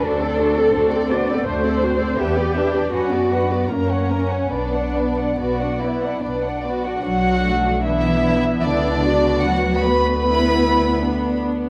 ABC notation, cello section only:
X:1
M:3/4
L:1/8
Q:1/4=77
K:Bm
V:1 name="Cello section"
A3 d =c2 | G2 F2 C2 | B,4 z2 | F,2 E,2 D,2 |
F, B,4 z |]